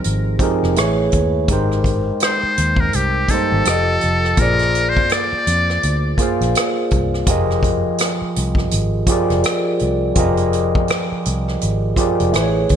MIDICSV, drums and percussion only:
0, 0, Header, 1, 2, 480
1, 0, Start_track
1, 0, Tempo, 722892
1, 987, Time_signature, 4, 2, 24, 8
1, 8473, End_track
2, 0, Start_track
2, 0, Title_t, "Drums"
2, 28, Note_on_c, 9, 42, 67
2, 94, Note_off_c, 9, 42, 0
2, 260, Note_on_c, 9, 36, 73
2, 263, Note_on_c, 9, 42, 57
2, 327, Note_off_c, 9, 36, 0
2, 329, Note_off_c, 9, 42, 0
2, 423, Note_on_c, 9, 37, 29
2, 489, Note_off_c, 9, 37, 0
2, 507, Note_on_c, 9, 42, 72
2, 521, Note_on_c, 9, 37, 80
2, 573, Note_off_c, 9, 42, 0
2, 588, Note_off_c, 9, 37, 0
2, 742, Note_on_c, 9, 42, 51
2, 750, Note_on_c, 9, 36, 70
2, 809, Note_off_c, 9, 42, 0
2, 817, Note_off_c, 9, 36, 0
2, 985, Note_on_c, 9, 36, 92
2, 985, Note_on_c, 9, 42, 76
2, 1051, Note_off_c, 9, 36, 0
2, 1051, Note_off_c, 9, 42, 0
2, 1139, Note_on_c, 9, 37, 26
2, 1205, Note_off_c, 9, 37, 0
2, 1223, Note_on_c, 9, 36, 69
2, 1232, Note_on_c, 9, 42, 54
2, 1289, Note_off_c, 9, 36, 0
2, 1298, Note_off_c, 9, 42, 0
2, 1461, Note_on_c, 9, 42, 75
2, 1478, Note_on_c, 9, 37, 83
2, 1528, Note_off_c, 9, 42, 0
2, 1545, Note_off_c, 9, 37, 0
2, 1711, Note_on_c, 9, 42, 77
2, 1777, Note_off_c, 9, 42, 0
2, 1836, Note_on_c, 9, 36, 76
2, 1902, Note_off_c, 9, 36, 0
2, 1946, Note_on_c, 9, 42, 68
2, 2012, Note_off_c, 9, 42, 0
2, 2181, Note_on_c, 9, 36, 65
2, 2181, Note_on_c, 9, 42, 64
2, 2247, Note_off_c, 9, 36, 0
2, 2248, Note_off_c, 9, 42, 0
2, 2425, Note_on_c, 9, 42, 84
2, 2440, Note_on_c, 9, 37, 76
2, 2492, Note_off_c, 9, 42, 0
2, 2506, Note_off_c, 9, 37, 0
2, 2663, Note_on_c, 9, 42, 51
2, 2729, Note_off_c, 9, 42, 0
2, 2821, Note_on_c, 9, 37, 33
2, 2887, Note_off_c, 9, 37, 0
2, 2902, Note_on_c, 9, 42, 73
2, 2905, Note_on_c, 9, 36, 88
2, 2968, Note_off_c, 9, 42, 0
2, 2971, Note_off_c, 9, 36, 0
2, 3048, Note_on_c, 9, 42, 35
2, 3064, Note_on_c, 9, 37, 26
2, 3115, Note_off_c, 9, 42, 0
2, 3131, Note_off_c, 9, 37, 0
2, 3153, Note_on_c, 9, 42, 56
2, 3220, Note_off_c, 9, 42, 0
2, 3297, Note_on_c, 9, 36, 74
2, 3364, Note_off_c, 9, 36, 0
2, 3383, Note_on_c, 9, 42, 68
2, 3400, Note_on_c, 9, 37, 78
2, 3449, Note_off_c, 9, 42, 0
2, 3466, Note_off_c, 9, 37, 0
2, 3632, Note_on_c, 9, 42, 79
2, 3698, Note_off_c, 9, 42, 0
2, 3783, Note_on_c, 9, 37, 33
2, 3849, Note_off_c, 9, 37, 0
2, 3872, Note_on_c, 9, 42, 70
2, 3938, Note_off_c, 9, 42, 0
2, 4102, Note_on_c, 9, 36, 67
2, 4108, Note_on_c, 9, 42, 57
2, 4169, Note_off_c, 9, 36, 0
2, 4174, Note_off_c, 9, 42, 0
2, 4259, Note_on_c, 9, 42, 42
2, 4264, Note_on_c, 9, 37, 30
2, 4325, Note_off_c, 9, 42, 0
2, 4330, Note_off_c, 9, 37, 0
2, 4350, Note_on_c, 9, 42, 75
2, 4365, Note_on_c, 9, 37, 85
2, 4416, Note_off_c, 9, 42, 0
2, 4431, Note_off_c, 9, 37, 0
2, 4586, Note_on_c, 9, 42, 47
2, 4593, Note_on_c, 9, 36, 74
2, 4653, Note_off_c, 9, 42, 0
2, 4659, Note_off_c, 9, 36, 0
2, 4742, Note_on_c, 9, 37, 31
2, 4809, Note_off_c, 9, 37, 0
2, 4826, Note_on_c, 9, 36, 83
2, 4826, Note_on_c, 9, 42, 76
2, 4892, Note_off_c, 9, 36, 0
2, 4892, Note_off_c, 9, 42, 0
2, 4984, Note_on_c, 9, 37, 27
2, 5051, Note_off_c, 9, 37, 0
2, 5064, Note_on_c, 9, 36, 71
2, 5072, Note_on_c, 9, 42, 53
2, 5131, Note_off_c, 9, 36, 0
2, 5138, Note_off_c, 9, 42, 0
2, 5301, Note_on_c, 9, 42, 74
2, 5318, Note_on_c, 9, 37, 82
2, 5368, Note_off_c, 9, 42, 0
2, 5385, Note_off_c, 9, 37, 0
2, 5553, Note_on_c, 9, 42, 78
2, 5619, Note_off_c, 9, 42, 0
2, 5676, Note_on_c, 9, 36, 69
2, 5699, Note_on_c, 9, 37, 32
2, 5743, Note_off_c, 9, 36, 0
2, 5765, Note_off_c, 9, 37, 0
2, 5785, Note_on_c, 9, 42, 70
2, 5852, Note_off_c, 9, 42, 0
2, 6020, Note_on_c, 9, 42, 63
2, 6021, Note_on_c, 9, 36, 71
2, 6087, Note_off_c, 9, 36, 0
2, 6087, Note_off_c, 9, 42, 0
2, 6175, Note_on_c, 9, 42, 41
2, 6180, Note_on_c, 9, 37, 29
2, 6241, Note_off_c, 9, 42, 0
2, 6247, Note_off_c, 9, 37, 0
2, 6266, Note_on_c, 9, 42, 71
2, 6281, Note_on_c, 9, 37, 84
2, 6332, Note_off_c, 9, 42, 0
2, 6347, Note_off_c, 9, 37, 0
2, 6503, Note_on_c, 9, 42, 49
2, 6569, Note_off_c, 9, 42, 0
2, 6742, Note_on_c, 9, 42, 72
2, 6746, Note_on_c, 9, 36, 90
2, 6808, Note_off_c, 9, 42, 0
2, 6812, Note_off_c, 9, 36, 0
2, 6887, Note_on_c, 9, 42, 40
2, 6953, Note_off_c, 9, 42, 0
2, 6991, Note_on_c, 9, 42, 51
2, 7058, Note_off_c, 9, 42, 0
2, 7139, Note_on_c, 9, 36, 80
2, 7205, Note_off_c, 9, 36, 0
2, 7225, Note_on_c, 9, 42, 72
2, 7242, Note_on_c, 9, 37, 80
2, 7291, Note_off_c, 9, 42, 0
2, 7308, Note_off_c, 9, 37, 0
2, 7473, Note_on_c, 9, 42, 80
2, 7539, Note_off_c, 9, 42, 0
2, 7625, Note_on_c, 9, 37, 32
2, 7692, Note_off_c, 9, 37, 0
2, 7712, Note_on_c, 9, 42, 70
2, 7778, Note_off_c, 9, 42, 0
2, 7944, Note_on_c, 9, 36, 69
2, 7948, Note_on_c, 9, 42, 67
2, 8010, Note_off_c, 9, 36, 0
2, 8015, Note_off_c, 9, 42, 0
2, 8099, Note_on_c, 9, 42, 42
2, 8166, Note_off_c, 9, 42, 0
2, 8191, Note_on_c, 9, 42, 81
2, 8205, Note_on_c, 9, 37, 76
2, 8257, Note_off_c, 9, 42, 0
2, 8272, Note_off_c, 9, 37, 0
2, 8427, Note_on_c, 9, 42, 56
2, 8434, Note_on_c, 9, 36, 70
2, 8473, Note_off_c, 9, 36, 0
2, 8473, Note_off_c, 9, 42, 0
2, 8473, End_track
0, 0, End_of_file